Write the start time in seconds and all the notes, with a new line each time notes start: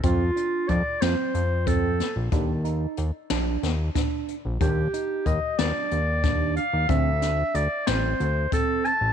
0.03 F2 C4 F4, kick, closed hi-hat
0.36 D4, closed hi-hat
0.69 F2 D5, kick, closed hi-hat
1.01 F2 C4 C5, snare, closed hi-hat
1.34 F2, closed hi-hat
1.67 C4 A4, kick, closed hi-hat
2.00 snare, closed hi-hat
2.16 A#1
2.32 D#2 D4, kick, closed hi-hat
2.65 D#4, closed hi-hat
2.97 D#2, closed hi-hat
3.30 A#1 D4, snare, closed hi-hat
3.63 D#2, snare, closed hi-hat
3.95 D4, kick, snare, closed hi-hat
4.28 closed hi-hat
4.45 A#1
4.60 D#2 D4 G4, kick, closed hi-hat
4.94 D#4, closed hi-hat
5.26 D#2 D#5, kick, closed hi-hat
5.58 D#2 D4 D5, snare, closed hi-hat
5.91 D#2, closed hi-hat
6.24 D4, kick, snare, closed hi-hat
6.56 F5, closed hi-hat
6.73 D#2
6.89 D2 C4 E5, kick, closed hi-hat
7.22 D4, snare, closed hi-hat
7.55 D2 D5, closed hi-hat
7.87 A1 C4 C5, snare, closed hi-hat
8.20 D2, closed hi-hat
8.52 C4 A4, kick, closed hi-hat
8.85 A5, closed hi-hat
9.01 A1